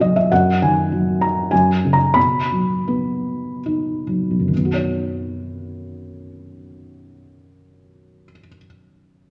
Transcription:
0, 0, Header, 1, 2, 480
1, 0, Start_track
1, 0, Key_signature, 5, "major"
1, 0, Tempo, 606673
1, 242, Time_signature, 3, 2, 24, 8
1, 1202, Tempo, 643087
1, 1682, Tempo, 697674
1, 2162, Tempo, 778210
1, 2642, Tempo, 881057
1, 3122, Tempo, 920245
1, 5617, End_track
2, 0, Start_track
2, 0, Title_t, "Felt piano"
2, 0, Program_c, 0, 0
2, 0, Control_c, 0, 64, 127
2, 0, Note_on_c, 0, 47, 60
2, 0, Note_on_c, 0, 54, 46
2, 0, Note_on_c, 0, 63, 54
2, 0, Note_on_c, 0, 66, 55
2, 0, Note_on_c, 0, 75, 79
2, 4, Note_off_c, 0, 54, 0
2, 4, Note_on_c, 0, 54, 46
2, 10, Note_off_c, 0, 75, 0
2, 10, Note_on_c, 0, 75, 63
2, 128, Note_on_c, 0, 76, 65
2, 130, Note_off_c, 0, 75, 0
2, 212, Note_off_c, 0, 63, 0
2, 214, Note_off_c, 0, 47, 0
2, 230, Note_off_c, 0, 66, 0
2, 236, Note_off_c, 0, 54, 0
2, 237, Note_off_c, 0, 76, 0
2, 250, Note_on_c, 0, 78, 61
2, 253, Control_c, 0, 64, 0
2, 256, Note_on_c, 0, 42, 43
2, 381, Control_c, 0, 64, 127
2, 468, Note_off_c, 0, 78, 0
2, 493, Note_on_c, 0, 80, 52
2, 494, Note_on_c, 0, 51, 30
2, 726, Note_on_c, 0, 54, 35
2, 961, Note_on_c, 0, 82, 53
2, 976, Note_off_c, 0, 80, 0
2, 1180, Note_off_c, 0, 42, 0
2, 1187, Note_off_c, 0, 51, 0
2, 1192, Note_off_c, 0, 54, 0
2, 1195, Note_on_c, 0, 80, 59
2, 1208, Note_on_c, 0, 42, 44
2, 1211, Note_off_c, 0, 82, 0
2, 1211, Control_c, 0, 64, 0
2, 1332, Control_c, 0, 64, 127
2, 1449, Note_on_c, 0, 49, 32
2, 1509, Note_on_c, 0, 82, 64
2, 1526, Note_off_c, 0, 80, 0
2, 1664, Note_on_c, 0, 83, 72
2, 1670, Note_off_c, 0, 42, 0
2, 1677, Note_on_c, 0, 47, 41
2, 1679, Note_off_c, 0, 49, 0
2, 1681, Note_off_c, 0, 82, 0
2, 1692, Control_c, 0, 64, 0
2, 1828, Control_c, 0, 64, 127
2, 1927, Note_on_c, 0, 54, 31
2, 2172, Note_on_c, 0, 59, 35
2, 2610, Note_off_c, 0, 83, 0
2, 2653, Note_on_c, 0, 63, 29
2, 2856, Note_off_c, 0, 54, 0
2, 2878, Note_on_c, 0, 54, 29
2, 3005, Note_on_c, 0, 35, 26
2, 3055, Note_on_c, 0, 42, 26
2, 3099, Note_off_c, 0, 47, 0
2, 3100, Note_on_c, 0, 51, 27
2, 3105, Note_off_c, 0, 59, 0
2, 3113, Note_off_c, 0, 63, 0
2, 3117, Note_off_c, 0, 54, 0
2, 3128, Control_c, 0, 64, 0
2, 3143, Note_on_c, 0, 59, 26
2, 3190, Note_on_c, 0, 66, 25
2, 3214, Control_c, 0, 64, 127
2, 3236, Note_on_c, 0, 73, 29
2, 5052, Note_off_c, 0, 35, 0
2, 5099, Note_off_c, 0, 42, 0
2, 5142, Note_off_c, 0, 51, 0
2, 5185, Note_off_c, 0, 59, 0
2, 5231, Note_off_c, 0, 66, 0
2, 5278, Note_off_c, 0, 73, 0
2, 5617, End_track
0, 0, End_of_file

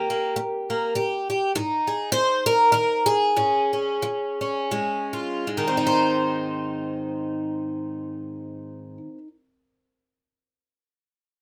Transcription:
0, 0, Header, 1, 2, 480
1, 0, Start_track
1, 0, Key_signature, -4, "major"
1, 0, Tempo, 593472
1, 1236, Time_signature, 3, 2, 24, 8
1, 2206, Tempo, 644468
1, 3166, Tempo, 701754
1, 3646, Tempo, 754717
1, 4126, Tempo, 787402
1, 7748, End_track
2, 0, Start_track
2, 0, Title_t, "Twelve-string acoustic guitar"
2, 0, Program_c, 0, 25
2, 0, Note_on_c, 0, 51, 65
2, 0, Note_on_c, 0, 67, 78
2, 80, Note_on_c, 0, 58, 45
2, 242, Note_off_c, 0, 51, 0
2, 282, Note_off_c, 0, 58, 0
2, 292, Note_on_c, 0, 58, 57
2, 552, Note_off_c, 0, 58, 0
2, 565, Note_on_c, 0, 58, 41
2, 761, Note_off_c, 0, 58, 0
2, 767, Note_off_c, 0, 67, 0
2, 771, Note_on_c, 0, 58, 57
2, 776, Note_on_c, 0, 67, 40
2, 1032, Note_off_c, 0, 67, 0
2, 1049, Note_on_c, 0, 67, 46
2, 1199, Note_off_c, 0, 58, 0
2, 1223, Note_off_c, 0, 67, 0
2, 1257, Note_on_c, 0, 44, 69
2, 1261, Note_on_c, 0, 63, 35
2, 1515, Note_on_c, 0, 68, 43
2, 1684, Note_off_c, 0, 44, 0
2, 1712, Note_off_c, 0, 68, 0
2, 1715, Note_on_c, 0, 72, 95
2, 1724, Note_on_c, 0, 51, 54
2, 1986, Note_off_c, 0, 72, 0
2, 1991, Note_on_c, 0, 70, 85
2, 2166, Note_off_c, 0, 51, 0
2, 2191, Note_off_c, 0, 70, 0
2, 2200, Note_on_c, 0, 70, 83
2, 2213, Note_on_c, 0, 51, 54
2, 2451, Note_off_c, 0, 70, 0
2, 2454, Note_on_c, 0, 68, 72
2, 2636, Note_off_c, 0, 51, 0
2, 2660, Note_off_c, 0, 63, 0
2, 2681, Note_on_c, 0, 44, 61
2, 2685, Note_on_c, 0, 61, 42
2, 2944, Note_off_c, 0, 61, 0
2, 2953, Note_on_c, 0, 61, 40
2, 3124, Note_off_c, 0, 44, 0
2, 3171, Note_on_c, 0, 53, 56
2, 3427, Note_off_c, 0, 61, 0
2, 3435, Note_on_c, 0, 61, 42
2, 3605, Note_off_c, 0, 53, 0
2, 3643, Note_on_c, 0, 44, 55
2, 3649, Note_on_c, 0, 56, 39
2, 3904, Note_off_c, 0, 68, 0
2, 3909, Note_on_c, 0, 65, 40
2, 4081, Note_off_c, 0, 44, 0
2, 4103, Note_off_c, 0, 61, 0
2, 4126, Note_on_c, 0, 44, 47
2, 4127, Note_off_c, 0, 65, 0
2, 4187, Note_on_c, 0, 51, 51
2, 4247, Note_off_c, 0, 56, 0
2, 4249, Note_on_c, 0, 60, 51
2, 4309, Note_on_c, 0, 63, 47
2, 4366, Note_on_c, 0, 72, 64
2, 6259, Note_off_c, 0, 44, 0
2, 6321, Note_off_c, 0, 51, 0
2, 6383, Note_off_c, 0, 60, 0
2, 6386, Note_off_c, 0, 72, 0
2, 6442, Note_off_c, 0, 63, 0
2, 7748, End_track
0, 0, End_of_file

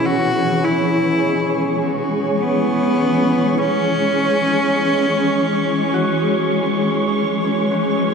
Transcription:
0, 0, Header, 1, 5, 480
1, 0, Start_track
1, 0, Tempo, 500000
1, 7815, End_track
2, 0, Start_track
2, 0, Title_t, "Synth texture"
2, 0, Program_c, 0, 99
2, 53, Note_on_c, 0, 85, 76
2, 7815, Note_off_c, 0, 85, 0
2, 7815, End_track
3, 0, Start_track
3, 0, Title_t, "Synth bell"
3, 0, Program_c, 1, 98
3, 0, Control_c, 1, 64, 127
3, 0, Note_on_c, 1, 73, 62
3, 0, Note_on_c, 1, 75, 46
3, 75, Control_c, 1, 64, 0
3, 246, Control_c, 1, 64, 127
3, 1483, Note_off_c, 1, 73, 0
3, 3743, Note_off_c, 1, 75, 0
3, 5702, Note_on_c, 1, 66, 58
3, 7815, Note_off_c, 1, 66, 0
3, 7815, End_track
4, 0, Start_track
4, 0, Title_t, "Cello"
4, 0, Program_c, 2, 42
4, 52, Note_on_c, 2, 66, 89
4, 618, Note_on_c, 2, 64, 82
4, 633, Note_off_c, 2, 66, 0
4, 1752, Note_off_c, 2, 64, 0
4, 2302, Note_on_c, 2, 59, 88
4, 3444, Note_on_c, 2, 61, 101
4, 3459, Note_off_c, 2, 59, 0
4, 6271, Note_off_c, 2, 61, 0
4, 7815, End_track
5, 0, Start_track
5, 0, Title_t, "Ambient pad"
5, 0, Program_c, 3, 92
5, 0, Note_on_c, 3, 47, 74
5, 0, Note_on_c, 3, 52, 72
5, 0, Note_on_c, 3, 61, 62
5, 0, Note_on_c, 3, 68, 60
5, 0, Note_on_c, 3, 73, 63
5, 354, Note_on_c, 3, 56, 69
5, 2415, Note_off_c, 3, 47, 0
5, 7815, Note_off_c, 3, 52, 0
5, 7815, Note_off_c, 3, 56, 0
5, 7815, Note_off_c, 3, 61, 0
5, 7815, Note_off_c, 3, 68, 0
5, 7815, Note_off_c, 3, 73, 0
5, 7815, End_track
0, 0, End_of_file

